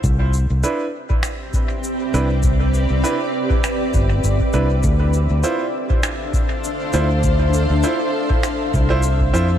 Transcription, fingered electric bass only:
X:1
M:4/4
L:1/16
Q:"Swing 16ths" 1/4=100
K:C
V:1 name="Fingered electric bass" clef=bass
C,,3 C,, z8 z2 C,,2- | C,,3 C,, z6 G,,,2 G,,, z C,,2 | D,,3 D,, z8 z2 D,,2- | D,,3 D,, z6 C,,4 F,,2 |]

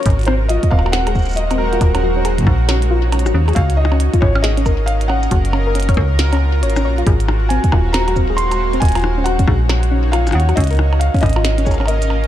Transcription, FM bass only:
X:1
M:4/4
L:1/16
Q:"Swing 16ths" 1/4=137
K:Abmix
V:1 name="FM bass" clef=bass
A,,,4- A,,, z E,,,8- E,,,2 | E,,,6 B,,,6- B,,, A,,, E,,2 | D,,4- D,, z A,,,8- A,,,2 | G,,,6 D,,6 A,,,2 B,,,2 |
A,,,4- A,,, z E,,,8- E,,,2 | E,,,6 B,,,6- B,,, A,,, E,,2 | D,,4- D,, z A,,,8- A,,,2 |]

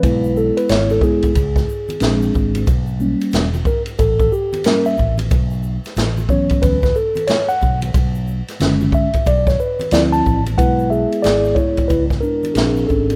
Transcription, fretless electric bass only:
X:1
M:4/4
L:1/16
Q:"Swing 16ths" 1/4=91
K:C#phr
V:1 name="Fretless electric bass" clef=bass
B,,,3 z G,,,2 z2 C,,2 z2 ^A,,,2 G,,,2 | B,,,3 z E,,,2 z2 A,,,2 z4 A,,,2 | B,,,3 z A,,,2 z2 D,,2 z4 B,,,2 | B,,,3 z F,,,2 z2 B,,,2 z2 D,,2 A,,,2 |
B,,,3 z G,,,2 z2 C,,2 z2 ^A,,,2 G,,,2 |]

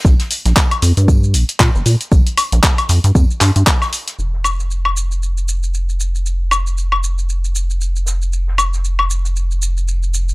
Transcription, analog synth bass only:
X:1
M:4/4
L:1/16
Q:"Swing 16ths" 1/4=116
K:Cphr
V:1 name="Analog synth bass" clef=bass
B,,, z2 B,,, z2 F,, G,,3 B,,, z B,, G,,, B,, z | B,,, z2 B,,, z2 F,, G,, F,, z G,, G,, z4 | F,,,16- | F,,,16- |
F,,,16 |]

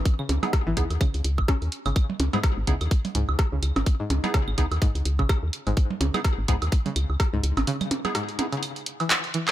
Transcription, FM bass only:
X:1
M:4/4
L:1/16
Q:"Swing 16ths" 1/4=126
K:C#m
V:1 name="FM bass" clef=bass
z2 C,, z2 G,,, C,, D,, z C,, C,, G,,, z D,, z G,,, | z2 C,, z2 G,,, C,, D,, z2 C,, C,, z C,, C,, G,,, | z2 C,, z2 G,,, C,, D,, z C,, C,, G,,, z D,, z G,,, | z2 C,, z2 G,,, C,, D,, z2 C,, C,, z C,, C,, G,,, |
z16 |]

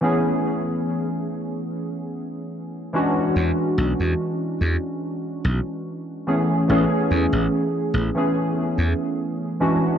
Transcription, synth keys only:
X:1
M:4/4
L:1/16
Q:1/4=72
K:A
V:1 name="Synth keys"
[E,A,B,CG]12- [E,A,B,CG]2 [E,G,CDF]2- | [E,G,CDF]12- [E,G,CDF]2 [E,A,B,CG]2 | [E,A,B,CG]6- [E,A,B,CG] [E,A,B,CG]6- [E,A,B,CG] [E,G,CDF]2 |]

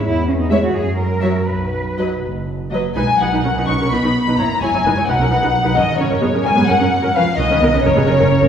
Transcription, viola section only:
X:1
M:6/8
L:1/16
Q:3/8=86
K:B
V:1 name="Viola section"
z4 G, z4 z F, z | z4 F, z4 z F, z | [DB] z [DB] [DB] [CA] [DB] [DB] [CA] [DB] [DB] z [DB] | [Ec] z [Ec] [Ec] [DB] [Ec] [DB] [CA] [DB] [DB] z [DB] |
[CA] z [CA] [CA] [B,G] [CA] [CA] [B,G] [CA] [CA] z [CA] | [CB] z [CB] [CB] [B,A] [CB] [CA] [B,G] [CA] [CA] z [CA] |]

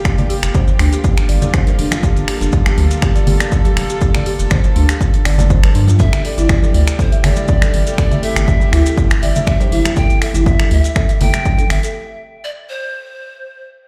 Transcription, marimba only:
X:1
M:4/4
L:1/16
Q:"Swing 16ths" 1/4=121
K:Aphr
V:1 name="Marimba"
G d G z c z D G z2 d d c B D z | G z G D z G z2 G d G d z G z G | G d G z c z D G z2 d d c B D F | A z A E z A z2 A e A e z A z A |
A e A z d z E A z2 e e d c E z | A z A E z A z2 A e A e z A z A | z16 |]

